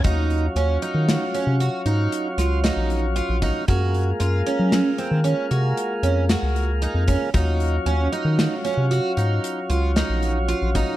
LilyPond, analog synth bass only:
\new Staff \with { instrumentName = "Analog synth bass" } { \clef bass \time 7/4 \key ees \dorian \tempo 4 = 115 ees,4 ees,8 r16 ees8 r8 c8 r16 aes,8 r8 des,8. bes,,4 bes,,8 r16 | ges,4 ges,8 r16 ges8 r8 ees8 r16 c8 r8 f,8. des,4 f,8 r16 | ees,4 ees,8 r16 ees8 r8 c8 r16 aes,8 r8 des,8. bes,,4 bes,,8 r16 | }